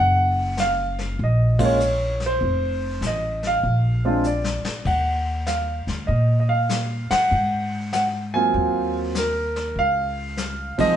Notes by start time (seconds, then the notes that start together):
Already playing: F#1 F#5
0.57 F5, snare, hi-hat pedal
0.99 snare
1.18 A#1, brush sweep
1.24 D#5
1.59 G#3 A#3 C#4 F4, kick, ride
1.65 C#5
1.80 hi-hat pedal
2.20 snare
2.26 C5
2.41 F1, brush sweep
3.01 A1, snare, hi-hat pedal
3.07 D#5
3.43 snare
3.47 F5
3.62 A#1, brush sweep
4.05 G#3 C4 D4 F4
4.24 D5, hi-hat pedal
4.44 snare
4.65 muted upright bass stroke, snare
4.85 D#2 F#5, brush sweep, kick, ride
5.46 F5, snare, hi-hat pedal
5.87 D2, snare
6.07 A#2 D#5, brush sweep
6.40 D#5
6.49 F5
6.69 snare, hi-hat pedal
7.11 F#5, muted upright bass stroke, snare, ride
7.31 G#2, brush sweep
7.93 F#5, snare, hi-hat pedal
8.34 F#3 A#3 C4 F4 G#5
8.54 D#2, brush sweep
9.15 A#4, snare, hi-hat pedal
9.56 snare
9.76 C#2 F5, brush sweep
10.37 snare, hi-hat pedal
10.78 F3 G#3 C4 D#4 D#5, muted upright bass stroke, kick, ride